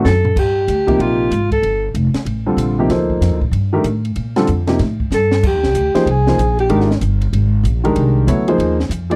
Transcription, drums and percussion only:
0.05 snare, hi-hat pedal
0.25 floor tom
0.36 kick, crash
0.68 hi-hat pedal, ride
0.88 kick, ride
1.00 ride
1.31 hi-hat pedal, ride
1.51 kick, ride
1.63 ride
1.95 hi-hat pedal, ride
2.14 snare, ride
2.26 ride
2.58 hi-hat pedal, ride
2.90 snare, ride
3.10 kick
3.22 snare, hi-hat pedal, ride
3.41 kick
3.53 ride
3.84 hi-hat pedal, ride
4.05 ride
4.16 ride
4.36 snare, ride
4.47 hi-hat pedal, ride
4.67 snare, ride
4.79 snare, ride
5.00 kick
5.12 snare, hi-hat pedal
5.31 snare
5.43 kick, crash
5.63 snare
5.75 hi-hat pedal, ride
5.95 snare, ride
6.07 ride
6.27 snare
6.39 hi-hat pedal, ride
6.59 ride
6.70 ride
6.80 snare
6.91 snare
7.01 hi-hat pedal, ride
7.21 ride
7.33 ride
7.65 hi-hat pedal, ride
7.85 ride
7.96 ride
8.28 hi-hat pedal, ride
8.48 ride
8.60 ride
8.80 snare
8.91 hi-hat pedal, ride
9.11 ride

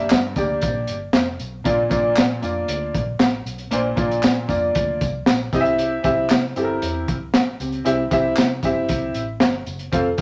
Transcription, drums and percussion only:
0.10 snare, clap, closed hi-hat, tambourine
0.36 kick, closed hi-hat, tambourine
0.61 kick, closed hi-hat, tambourine
0.87 closed hi-hat, tambourine
1.13 snare, clap, closed hi-hat, tambourine
1.39 closed hi-hat, tambourine
1.65 kick, closed hi-hat, tambourine
1.91 kick, closed hi-hat, tambourine
2.16 snare, clap, closed hi-hat, tambourine
2.42 closed hi-hat, tambourine
2.68 closed hi-hat, tambourine
2.95 kick, closed hi-hat
3.20 snare, clap, closed hi-hat, tambourine
3.46 closed hi-hat, tambourine
3.58 closed hi-hat
3.71 closed hi-hat
3.97 kick, closed hi-hat, tambourine
4.11 closed hi-hat
4.23 snare, clap, closed hi-hat, tambourine
4.49 kick, closed hi-hat, tambourine
4.75 kick, closed hi-hat, tambourine
5.01 kick, closed hi-hat, tambourine
5.26 snare, clap, closed hi-hat, tambourine
5.53 kick, closed hi-hat, tambourine
5.65 closed hi-hat
5.79 closed hi-hat
6.04 kick, closed hi-hat, tambourine
6.30 snare, clap, closed hi-hat, tambourine
6.56 closed hi-hat, tambourine
6.82 closed hi-hat, tambourine
7.08 kick, closed hi-hat
7.34 snare, clap, closed hi-hat, tambourine
7.60 closed hi-hat, tambourine
7.72 closed hi-hat
7.86 closed hi-hat, tambourine
8.11 kick, closed hi-hat, tambourine
8.36 snare, clap, closed hi-hat, tambourine
8.63 kick, closed hi-hat, tambourine
8.88 kick, closed hi-hat, tambourine
9.14 closed hi-hat, tambourine
9.40 snare, clap, closed hi-hat, tambourine
9.66 closed hi-hat, tambourine
9.79 closed hi-hat
9.93 kick, closed hi-hat, tambourine
10.18 closed hi-hat

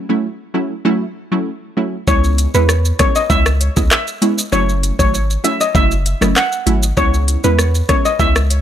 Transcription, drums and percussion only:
2.08 kick, shaker
2.24 shaker
2.38 closed hi-hat, shaker
2.54 shaker
2.69 cross-stick, shaker
2.85 shaker
2.99 kick, cross-stick, closed hi-hat, shaker
3.16 shaker
3.30 kick, shaker
3.46 cross-stick, shaker
3.61 closed hi-hat, shaker
3.77 kick, shaker
3.91 cross-stick, clap, shaker
4.08 shaker
4.22 closed hi-hat, shaker
4.38 shaker
4.53 shaker
4.69 shaker
4.83 closed hi-hat, shaker
4.99 kick, shaker
5.14 shaker
5.30 shaker
5.44 closed hi-hat, shaker
5.61 shaker
5.75 kick, shaker
5.91 shaker
6.06 closed hi-hat, shaker
6.22 cross-stick, shaker
6.36 cross-stick, clap, shaker
6.52 shaker
6.67 closed hi-hat, shaker
6.83 shaker
6.97 kick, shaker
7.14 shaker
7.28 closed hi-hat, shaker
7.44 shaker
7.59 cross-stick, shaker
7.75 shaker
7.89 kick, cross-stick, closed hi-hat, shaker
8.05 shaker
8.20 kick, shaker
8.36 cross-stick, shaker
8.50 closed hi-hat, shaker

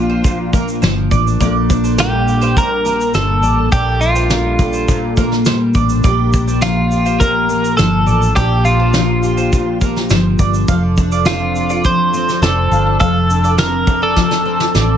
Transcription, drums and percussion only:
0.24 kick, shaker
0.53 kick, shaker
0.68 shaker
0.83 snare, shaker
1.11 kick, shaker
1.27 shaker
1.41 kick, shaker
1.70 kick, shaker
1.84 shaker
1.98 snare, shaker
2.28 shaker
2.42 shaker
2.57 kick, shaker
2.86 shaker
3.01 shaker
3.14 snare, shaker
3.43 shaker
3.72 kick, shaker
4.01 shaker
4.16 shaker
4.30 snare, shaker
4.59 kick, shaker
4.73 shaker
4.88 kick, shaker
5.17 kick, shaker
5.32 snare
5.45 snare, shaker
5.74 kick, shaker
5.89 shaker
6.04 kick, shaker
6.33 kick, shaker
6.48 shaker
6.62 snare, shaker
6.91 shaker
7.06 shaker
7.21 kick, shaker
7.50 shaker
7.65 shaker
7.78 snare, shaker
8.07 shaker
8.22 shaker
8.37 kick, shaker
8.65 shaker
8.94 snare, shaker
9.23 shaker
9.38 shaker
9.53 kick, shaker
9.81 kick, shaker
9.96 snare
10.10 snare, shaker
10.39 kick, shaker
10.54 shaker
10.68 kick, shaker
10.97 kick, shaker
11.12 shaker
11.26 snare, shaker
11.55 shaker
11.70 shaker
11.84 kick, shaker
12.14 shaker
12.29 snare, shaker
12.43 snare, shaker
12.72 shaker
13.01 kick, shaker
13.30 shaker
13.44 shaker
13.58 snare, shaker
13.87 kick, shaker
14.16 kick, snare
14.31 snare
14.60 snare
14.75 snare

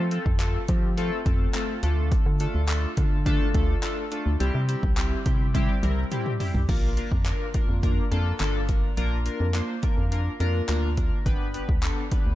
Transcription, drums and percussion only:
0.11 closed hi-hat
0.26 kick
0.40 clap, closed hi-hat
0.68 kick, closed hi-hat
0.98 closed hi-hat
1.26 kick, closed hi-hat
1.54 clap, closed hi-hat
1.83 closed hi-hat
2.12 kick, closed hi-hat
2.40 closed hi-hat
2.69 clap, closed hi-hat
2.97 kick, closed hi-hat
3.26 kick, closed hi-hat
3.54 kick, closed hi-hat
3.83 clap, closed hi-hat
4.12 closed hi-hat
4.40 closed hi-hat
4.69 closed hi-hat
4.83 kick
4.97 clap, closed hi-hat
5.26 kick, closed hi-hat
5.55 kick, closed hi-hat, high tom
5.83 closed hi-hat, mid tom
6.12 closed hi-hat, mid tom
6.26 mid tom
6.40 floor tom, open hi-hat
6.55 floor tom
6.69 kick, closed hi-hat, crash
6.97 closed hi-hat
7.12 kick
7.26 clap, closed hi-hat
7.54 kick, closed hi-hat
7.83 kick, closed hi-hat
8.12 closed hi-hat
8.40 clap, closed hi-hat
8.69 kick, closed hi-hat
8.97 closed hi-hat
9.26 closed hi-hat
9.54 clap, closed hi-hat
9.83 kick, closed hi-hat
10.12 closed hi-hat
10.40 closed hi-hat
10.69 clap, closed hi-hat
10.97 kick, closed hi-hat
11.26 kick, closed hi-hat
11.54 closed hi-hat
11.69 kick
11.83 clap, closed hi-hat
12.12 kick, closed hi-hat

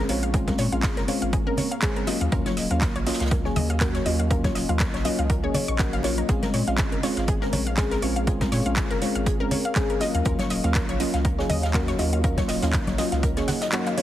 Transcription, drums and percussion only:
0.09 closed hi-hat, open hi-hat, high bongo
0.23 closed hi-hat
0.34 kick, closed hi-hat
0.47 kick, snare, closed hi-hat, high conga
0.58 snare, closed hi-hat, open hi-hat
0.72 closed hi-hat
0.83 kick, snare, clap, closed hi-hat
0.97 snare, closed hi-hat
1.08 closed hi-hat, open hi-hat
1.22 closed hi-hat
1.33 kick, closed hi-hat
1.57 closed hi-hat, open hi-hat, low conga
1.72 closed hi-hat
1.82 kick, snare, clap, closed hi-hat
1.96 closed hi-hat
2.07 snare, closed hi-hat, open hi-hat, high bongo
2.21 closed hi-hat
2.32 kick, closed hi-hat
2.46 snare, closed hi-hat, high conga
2.57 snare, closed hi-hat, open hi-hat
2.71 closed hi-hat
2.81 kick, snare, clap, closed hi-hat
2.96 closed hi-hat
3.07 snare, closed hi-hat, open hi-hat
3.13 snare, closed hi-hat
3.20 snare, closed hi-hat
3.26 snare, closed hi-hat
3.31 kick, closed hi-hat
3.45 snare
3.56 closed hi-hat, open hi-hat, high conga, low conga
3.70 closed hi-hat
3.80 kick, snare, clap, closed hi-hat
3.95 snare, closed hi-hat
4.06 closed hi-hat, open hi-hat, high bongo
4.20 closed hi-hat
4.31 kick, closed hi-hat
4.44 kick, snare, closed hi-hat, high bongo, high conga
4.55 snare, closed hi-hat, open hi-hat
4.69 closed hi-hat
4.80 kick, snare, clap, closed hi-hat
4.94 snare, closed hi-hat
5.05 closed hi-hat, open hi-hat
5.19 closed hi-hat
5.30 kick, closed hi-hat
5.54 closed hi-hat, open hi-hat, low conga
5.68 closed hi-hat
5.79 kick, snare, clap, closed hi-hat
5.93 closed hi-hat
6.03 snare, closed hi-hat, open hi-hat, high bongo
6.18 closed hi-hat
6.29 kick, closed hi-hat
6.42 snare, closed hi-hat, high conga
6.53 snare, closed hi-hat, open hi-hat
6.67 closed hi-hat
6.78 kick, snare, clap, closed hi-hat
6.92 closed hi-hat
7.03 snare, closed hi-hat, open hi-hat
7.17 snare, closed hi-hat
7.28 kick, closed hi-hat
7.42 snare
7.53 closed hi-hat, open hi-hat, high conga, low conga
7.67 closed hi-hat
7.77 kick, snare, clap, closed hi-hat
7.91 snare, closed hi-hat
8.02 closed hi-hat, open hi-hat, high bongo
8.16 closed hi-hat
8.27 kick, closed hi-hat
8.41 kick, snare, closed hi-hat, high conga
8.52 snare, closed hi-hat, open hi-hat
8.66 closed hi-hat
8.76 kick, snare, clap, closed hi-hat
8.91 snare, closed hi-hat
9.02 closed hi-hat, open hi-hat
9.16 closed hi-hat
9.26 kick, closed hi-hat
9.51 closed hi-hat, open hi-hat, low conga
9.65 closed hi-hat
9.75 kick, snare, clap, closed hi-hat
9.90 closed hi-hat
10.00 snare, closed hi-hat, open hi-hat, high bongo
10.15 closed hi-hat
10.25 kick, closed hi-hat
10.39 snare, closed hi-hat, high conga
10.50 snare, closed hi-hat, open hi-hat
10.64 closed hi-hat
10.75 kick, snare, clap, closed hi-hat
10.89 closed hi-hat
11.00 closed hi-hat, open hi-hat
11.14 snare, closed hi-hat
11.25 kick, closed hi-hat
11.39 snare
11.49 closed hi-hat, open hi-hat, high conga, low conga
11.63 snare, closed hi-hat
11.74 kick, snare, clap, closed hi-hat
11.88 snare, closed hi-hat
11.99 closed hi-hat, open hi-hat, high bongo
12.13 closed hi-hat
12.24 kick, closed hi-hat
12.37 kick, snare, closed hi-hat, high conga
12.48 snare, closed hi-hat, open hi-hat
12.62 snare, closed hi-hat
12.73 kick, snare, clap, closed hi-hat
12.87 snare, closed hi-hat, high conga
12.98 snare, closed hi-hat, open hi-hat
13.12 snare, closed hi-hat
13.23 kick, closed hi-hat
13.37 snare, closed hi-hat
13.48 snare, closed hi-hat, open hi-hat, low conga
13.61 snare, closed hi-hat
13.72 snare, clap, closed hi-hat
13.86 snare, clap, closed hi-hat
13.97 closed hi-hat, open hi-hat, high bongo

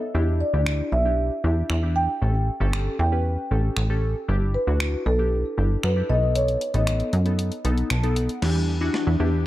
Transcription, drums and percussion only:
0.66 finger snap
1.70 finger snap
2.73 finger snap
3.77 finger snap
4.80 finger snap
5.83 finger snap
6.35 closed hi-hat
6.48 closed hi-hat
6.61 closed hi-hat
6.74 closed hi-hat
6.87 finger snap, closed hi-hat
7.00 closed hi-hat
7.13 closed hi-hat
7.26 closed hi-hat
7.39 closed hi-hat
7.52 closed hi-hat
7.65 closed hi-hat
7.78 closed hi-hat
7.90 finger snap, closed hi-hat
8.04 closed hi-hat
8.16 closed hi-hat
8.29 closed hi-hat
8.42 snare, crash
8.94 snare

